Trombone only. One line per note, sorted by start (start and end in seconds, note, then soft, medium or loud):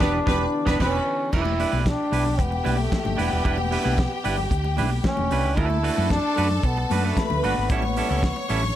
0.00 0.81 D4 loud
0.82 1.36 C#4 loud
1.35 1.80 E4 loud
1.80 1.89 E4 medium
1.88 2.42 D4 loud
2.41 2.82 B3 medium
2.80 3.23 A3 medium
3.21 3.46 B3 medium
3.47 4.48 B3 medium
5.06 5.60 C#4 loud
5.59 6.11 E4 loud
6.13 6.67 D4 loud
6.65 7.07 B3 medium
7.05 7.47 A3 medium
7.46 7.71 B3 medium
7.71 8.72 B3 medium